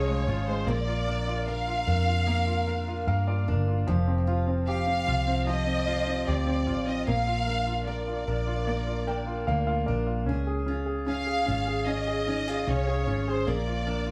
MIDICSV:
0, 0, Header, 1, 5, 480
1, 0, Start_track
1, 0, Key_signature, -2, "major"
1, 0, Tempo, 800000
1, 404, Time_signature, 4, 2, 24, 8
1, 8467, End_track
2, 0, Start_track
2, 0, Title_t, "Violin section"
2, 0, Program_c, 0, 48
2, 0, Note_on_c, 0, 73, 90
2, 287, Note_off_c, 0, 73, 0
2, 292, Note_on_c, 0, 72, 75
2, 408, Note_off_c, 0, 72, 0
2, 409, Note_on_c, 0, 74, 93
2, 886, Note_off_c, 0, 74, 0
2, 894, Note_on_c, 0, 77, 97
2, 2089, Note_off_c, 0, 77, 0
2, 2812, Note_on_c, 0, 77, 103
2, 3264, Note_off_c, 0, 77, 0
2, 3298, Note_on_c, 0, 75, 106
2, 3770, Note_on_c, 0, 74, 90
2, 3771, Note_off_c, 0, 75, 0
2, 4127, Note_off_c, 0, 74, 0
2, 4133, Note_on_c, 0, 75, 80
2, 4246, Note_on_c, 0, 77, 102
2, 4248, Note_off_c, 0, 75, 0
2, 4701, Note_off_c, 0, 77, 0
2, 4728, Note_on_c, 0, 74, 81
2, 5902, Note_off_c, 0, 74, 0
2, 6651, Note_on_c, 0, 77, 100
2, 7103, Note_off_c, 0, 77, 0
2, 7123, Note_on_c, 0, 75, 96
2, 7604, Note_off_c, 0, 75, 0
2, 7617, Note_on_c, 0, 73, 88
2, 7971, Note_off_c, 0, 73, 0
2, 7979, Note_on_c, 0, 72, 76
2, 8092, Note_off_c, 0, 72, 0
2, 8093, Note_on_c, 0, 74, 87
2, 8467, Note_off_c, 0, 74, 0
2, 8467, End_track
3, 0, Start_track
3, 0, Title_t, "Grand piano"
3, 0, Program_c, 1, 0
3, 0, Control_c, 1, 64, 127
3, 0, Note_on_c, 1, 53, 67
3, 0, Note_on_c, 1, 56, 51
3, 0, Note_on_c, 1, 61, 64
3, 0, Note_on_c, 1, 65, 53
3, 0, Note_on_c, 1, 68, 55
3, 45, Note_off_c, 1, 56, 0
3, 45, Note_on_c, 1, 56, 50
3, 158, Note_off_c, 1, 65, 0
3, 167, Note_on_c, 1, 65, 50
3, 278, Note_off_c, 1, 56, 0
3, 287, Note_on_c, 1, 56, 46
3, 377, Note_off_c, 1, 53, 0
3, 378, Note_off_c, 1, 61, 0
3, 390, Note_off_c, 1, 68, 0
3, 398, Note_off_c, 1, 65, 0
3, 401, Note_on_c, 1, 58, 69
3, 402, Note_off_c, 1, 56, 0
3, 412, Control_c, 1, 64, 0
3, 511, Control_c, 1, 64, 127
3, 525, Note_on_c, 1, 65, 51
3, 643, Note_on_c, 1, 70, 50
3, 756, Note_off_c, 1, 65, 0
3, 765, Note_on_c, 1, 65, 49
3, 877, Note_off_c, 1, 70, 0
3, 886, Note_on_c, 1, 70, 59
3, 998, Note_off_c, 1, 65, 0
3, 1007, Note_on_c, 1, 65, 48
3, 1116, Note_off_c, 1, 70, 0
3, 1125, Note_on_c, 1, 70, 50
3, 1238, Note_off_c, 1, 65, 0
3, 1247, Note_on_c, 1, 65, 51
3, 1352, Note_off_c, 1, 58, 0
3, 1361, Note_on_c, 1, 58, 66
3, 1475, Note_off_c, 1, 65, 0
3, 1484, Note_on_c, 1, 65, 49
3, 1595, Note_off_c, 1, 70, 0
3, 1604, Note_on_c, 1, 70, 56
3, 1720, Note_off_c, 1, 65, 0
3, 1729, Note_on_c, 1, 65, 57
3, 1836, Note_off_c, 1, 70, 0
3, 1845, Note_on_c, 1, 70, 56
3, 1846, Note_on_c, 1, 77, 66
3, 1955, Note_off_c, 1, 65, 0
3, 1957, Note_off_c, 1, 77, 0
3, 1964, Note_on_c, 1, 65, 54
3, 1966, Note_on_c, 1, 74, 68
3, 2080, Note_off_c, 1, 70, 0
3, 2089, Note_on_c, 1, 70, 51
3, 2200, Note_off_c, 1, 65, 0
3, 2209, Note_on_c, 1, 65, 50
3, 2298, Note_off_c, 1, 58, 0
3, 2301, Note_off_c, 1, 74, 0
3, 2319, Note_off_c, 1, 70, 0
3, 2322, Note_on_c, 1, 53, 62
3, 2323, Note_off_c, 1, 65, 0
3, 2332, Control_c, 1, 64, 0
3, 2437, Control_c, 1, 64, 127
3, 2445, Note_on_c, 1, 60, 52
3, 2565, Note_on_c, 1, 65, 51
3, 2675, Note_off_c, 1, 60, 0
3, 2684, Note_on_c, 1, 60, 49
3, 2807, Note_on_c, 1, 67, 59
3, 2914, Note_off_c, 1, 60, 0
3, 2923, Note_on_c, 1, 60, 45
3, 3032, Note_off_c, 1, 65, 0
3, 3041, Note_on_c, 1, 65, 48
3, 3155, Note_off_c, 1, 60, 0
3, 3164, Note_on_c, 1, 60, 51
3, 3272, Note_off_c, 1, 53, 0
3, 3281, Note_on_c, 1, 53, 67
3, 3391, Note_off_c, 1, 60, 0
3, 3400, Note_on_c, 1, 60, 48
3, 3512, Note_off_c, 1, 65, 0
3, 3521, Note_on_c, 1, 65, 56
3, 3637, Note_off_c, 1, 60, 0
3, 3646, Note_on_c, 1, 60, 52
3, 3741, Note_off_c, 1, 67, 0
3, 3763, Note_on_c, 1, 67, 54
3, 3869, Note_off_c, 1, 60, 0
3, 3878, Note_on_c, 1, 60, 49
3, 3992, Note_off_c, 1, 65, 0
3, 4001, Note_on_c, 1, 65, 51
3, 4112, Note_off_c, 1, 60, 0
3, 4121, Note_on_c, 1, 60, 43
3, 4219, Note_off_c, 1, 53, 0
3, 4229, Note_off_c, 1, 67, 0
3, 4235, Note_off_c, 1, 65, 0
3, 4239, Note_off_c, 1, 60, 0
3, 4242, Note_on_c, 1, 58, 64
3, 4253, Control_c, 1, 64, 0
3, 4357, Control_c, 1, 64, 127
3, 4364, Note_on_c, 1, 65, 53
3, 4482, Note_on_c, 1, 70, 52
3, 4594, Note_off_c, 1, 65, 0
3, 4603, Note_on_c, 1, 65, 46
3, 4717, Note_off_c, 1, 70, 0
3, 4726, Note_on_c, 1, 70, 54
3, 4836, Note_off_c, 1, 65, 0
3, 4845, Note_on_c, 1, 65, 45
3, 4957, Note_off_c, 1, 70, 0
3, 4966, Note_on_c, 1, 70, 47
3, 5074, Note_off_c, 1, 65, 0
3, 5083, Note_on_c, 1, 65, 48
3, 5194, Note_off_c, 1, 58, 0
3, 5203, Note_on_c, 1, 58, 61
3, 5311, Note_off_c, 1, 65, 0
3, 5320, Note_on_c, 1, 65, 45
3, 5435, Note_off_c, 1, 70, 0
3, 5442, Note_on_c, 1, 79, 63
3, 5444, Note_on_c, 1, 70, 53
3, 5551, Note_off_c, 1, 65, 0
3, 5560, Note_on_c, 1, 65, 50
3, 5666, Note_off_c, 1, 79, 0
3, 5672, Note_off_c, 1, 70, 0
3, 5681, Note_on_c, 1, 70, 56
3, 5683, Note_on_c, 1, 77, 66
3, 5792, Note_off_c, 1, 77, 0
3, 5794, Note_off_c, 1, 65, 0
3, 5801, Note_on_c, 1, 77, 61
3, 5803, Note_on_c, 1, 65, 46
3, 5909, Note_off_c, 1, 70, 0
3, 5914, Note_off_c, 1, 77, 0
3, 5917, Note_on_c, 1, 74, 61
3, 5918, Note_on_c, 1, 70, 49
3, 6030, Note_off_c, 1, 65, 0
3, 6039, Note_on_c, 1, 65, 44
3, 6139, Note_off_c, 1, 58, 0
3, 6144, Note_off_c, 1, 74, 0
3, 6154, Note_off_c, 1, 70, 0
3, 6156, Note_on_c, 1, 61, 58
3, 6158, Note_off_c, 1, 65, 0
3, 6171, Control_c, 1, 64, 0
3, 6265, Control_c, 1, 64, 127
3, 6281, Note_on_c, 1, 68, 49
3, 6388, Note_off_c, 1, 61, 0
3, 6397, Note_on_c, 1, 61, 50
3, 6506, Note_off_c, 1, 68, 0
3, 6515, Note_on_c, 1, 68, 48
3, 6629, Note_off_c, 1, 61, 0
3, 6638, Note_on_c, 1, 61, 56
3, 6750, Note_off_c, 1, 68, 0
3, 6759, Note_on_c, 1, 68, 45
3, 6866, Note_off_c, 1, 61, 0
3, 6875, Note_on_c, 1, 61, 53
3, 6991, Note_off_c, 1, 68, 0
3, 7000, Note_on_c, 1, 68, 49
3, 7109, Note_off_c, 1, 61, 0
3, 7118, Note_on_c, 1, 61, 59
3, 7233, Note_off_c, 1, 68, 0
3, 7242, Note_on_c, 1, 68, 50
3, 7351, Note_off_c, 1, 61, 0
3, 7360, Note_on_c, 1, 61, 53
3, 7476, Note_off_c, 1, 68, 0
3, 7485, Note_on_c, 1, 68, 51
3, 7595, Note_off_c, 1, 61, 0
3, 7604, Note_on_c, 1, 61, 54
3, 7716, Note_off_c, 1, 68, 0
3, 7725, Note_on_c, 1, 68, 50
3, 7833, Note_off_c, 1, 61, 0
3, 7842, Note_on_c, 1, 61, 50
3, 7956, Note_off_c, 1, 68, 0
3, 7965, Note_on_c, 1, 68, 46
3, 8076, Note_off_c, 1, 61, 0
3, 8080, Note_on_c, 1, 58, 62
3, 8081, Note_off_c, 1, 68, 0
3, 8092, Control_c, 1, 64, 0
3, 8198, Control_c, 1, 64, 127
3, 8204, Note_on_c, 1, 65, 50
3, 8320, Note_on_c, 1, 70, 51
3, 8430, Note_off_c, 1, 65, 0
3, 8439, Note_on_c, 1, 65, 48
3, 8467, Note_off_c, 1, 58, 0
3, 8467, Note_off_c, 1, 65, 0
3, 8467, Note_off_c, 1, 70, 0
3, 8467, End_track
4, 0, Start_track
4, 0, Title_t, "Steel-string acoustic guitar"
4, 0, Program_c, 2, 25
4, 0, Note_on_c, 2, 49, 73
4, 0, Note_on_c, 2, 61, 54
4, 0, Note_on_c, 2, 65, 56
4, 0, Note_on_c, 2, 68, 60
4, 167, Note_off_c, 2, 65, 0
4, 169, Note_on_c, 2, 65, 56
4, 405, Note_off_c, 2, 49, 0
4, 407, Note_off_c, 2, 68, 0
4, 409, Note_on_c, 2, 46, 78
4, 411, Note_on_c, 2, 70, 65
4, 455, Note_off_c, 2, 61, 0
4, 646, Note_off_c, 2, 65, 0
4, 648, Note_on_c, 2, 62, 59
4, 878, Note_off_c, 2, 70, 0
4, 885, Note_on_c, 2, 70, 62
4, 1114, Note_off_c, 2, 62, 0
4, 1122, Note_on_c, 2, 62, 59
4, 1356, Note_off_c, 2, 70, 0
4, 1363, Note_on_c, 2, 70, 62
4, 1596, Note_off_c, 2, 62, 0
4, 1603, Note_on_c, 2, 62, 56
4, 1846, Note_on_c, 2, 58, 54
4, 2080, Note_off_c, 2, 62, 0
4, 2087, Note_on_c, 2, 62, 61
4, 2323, Note_off_c, 2, 70, 0
4, 2325, Note_on_c, 2, 53, 81
4, 2326, Note_off_c, 2, 46, 0
4, 2330, Note_on_c, 2, 67, 64
4, 2373, Note_off_c, 2, 58, 0
4, 2373, Note_off_c, 2, 62, 0
4, 2563, Note_on_c, 2, 65, 58
4, 2796, Note_off_c, 2, 67, 0
4, 2803, Note_on_c, 2, 67, 57
4, 3043, Note_off_c, 2, 65, 0
4, 3046, Note_on_c, 2, 65, 56
4, 3275, Note_off_c, 2, 67, 0
4, 3282, Note_on_c, 2, 67, 62
4, 3524, Note_off_c, 2, 65, 0
4, 3527, Note_on_c, 2, 65, 55
4, 3766, Note_on_c, 2, 60, 55
4, 4001, Note_off_c, 2, 65, 0
4, 4003, Note_on_c, 2, 65, 59
4, 4243, Note_off_c, 2, 67, 0
4, 4243, Note_on_c, 2, 46, 71
4, 4248, Note_on_c, 2, 70, 54
4, 4293, Note_off_c, 2, 60, 0
4, 4425, Note_off_c, 2, 53, 0
4, 4483, Note_off_c, 2, 65, 0
4, 4485, Note_on_c, 2, 62, 55
4, 4717, Note_off_c, 2, 70, 0
4, 4724, Note_on_c, 2, 70, 57
4, 4959, Note_off_c, 2, 62, 0
4, 4966, Note_on_c, 2, 62, 56
4, 5202, Note_off_c, 2, 70, 0
4, 5209, Note_on_c, 2, 70, 62
4, 5439, Note_off_c, 2, 62, 0
4, 5446, Note_on_c, 2, 62, 55
4, 5690, Note_on_c, 2, 58, 58
4, 5921, Note_off_c, 2, 62, 0
4, 5928, Note_on_c, 2, 62, 53
4, 6164, Note_off_c, 2, 46, 0
4, 6166, Note_off_c, 2, 70, 0
4, 6173, Note_on_c, 2, 68, 60
4, 6214, Note_off_c, 2, 62, 0
4, 6215, Note_off_c, 2, 58, 0
4, 6407, Note_on_c, 2, 65, 56
4, 6640, Note_off_c, 2, 68, 0
4, 6647, Note_on_c, 2, 68, 57
4, 6887, Note_off_c, 2, 65, 0
4, 6889, Note_on_c, 2, 65, 55
4, 7116, Note_off_c, 2, 68, 0
4, 7123, Note_on_c, 2, 68, 60
4, 7362, Note_off_c, 2, 65, 0
4, 7364, Note_on_c, 2, 63, 58
4, 7486, Note_off_c, 2, 63, 0
4, 7486, Note_on_c, 2, 65, 48
4, 7605, Note_on_c, 2, 61, 58
4, 7838, Note_off_c, 2, 65, 0
4, 7845, Note_on_c, 2, 65, 54
4, 8083, Note_off_c, 2, 68, 0
4, 8084, Note_on_c, 2, 46, 74
4, 8088, Note_on_c, 2, 70, 63
4, 8132, Note_off_c, 2, 61, 0
4, 8322, Note_off_c, 2, 65, 0
4, 8324, Note_on_c, 2, 62, 57
4, 8467, Note_off_c, 2, 46, 0
4, 8467, Note_off_c, 2, 62, 0
4, 8467, Note_off_c, 2, 70, 0
4, 8467, End_track
5, 0, Start_track
5, 0, Title_t, "Fingered electric bass"
5, 0, Program_c, 3, 33
5, 0, Note_on_c, 3, 36, 85
5, 147, Note_off_c, 3, 36, 0
5, 162, Note_on_c, 3, 32, 80
5, 386, Note_off_c, 3, 32, 0
5, 403, Note_on_c, 3, 34, 96
5, 1099, Note_off_c, 3, 34, 0
5, 1124, Note_on_c, 3, 41, 93
5, 1820, Note_off_c, 3, 41, 0
5, 1843, Note_on_c, 3, 43, 91
5, 2091, Note_on_c, 3, 31, 84
5, 2100, Note_off_c, 3, 43, 0
5, 2311, Note_off_c, 3, 31, 0
5, 2332, Note_on_c, 3, 29, 95
5, 3024, Note_off_c, 3, 29, 0
5, 3049, Note_on_c, 3, 36, 80
5, 3743, Note_off_c, 3, 36, 0
5, 3767, Note_on_c, 3, 38, 81
5, 4006, Note_off_c, 3, 38, 0
5, 4006, Note_on_c, 3, 33, 78
5, 4228, Note_off_c, 3, 33, 0
5, 4247, Note_on_c, 3, 34, 93
5, 4942, Note_off_c, 3, 34, 0
5, 4967, Note_on_c, 3, 34, 81
5, 5662, Note_off_c, 3, 34, 0
5, 5686, Note_on_c, 3, 38, 82
5, 5908, Note_off_c, 3, 38, 0
5, 5926, Note_on_c, 3, 34, 81
5, 6164, Note_off_c, 3, 34, 0
5, 6164, Note_on_c, 3, 37, 96
5, 6860, Note_off_c, 3, 37, 0
5, 6888, Note_on_c, 3, 32, 89
5, 7582, Note_off_c, 3, 32, 0
5, 7605, Note_on_c, 3, 36, 83
5, 7828, Note_off_c, 3, 36, 0
5, 7845, Note_on_c, 3, 32, 76
5, 8068, Note_off_c, 3, 32, 0
5, 8086, Note_on_c, 3, 34, 92
5, 8467, Note_off_c, 3, 34, 0
5, 8467, End_track
0, 0, End_of_file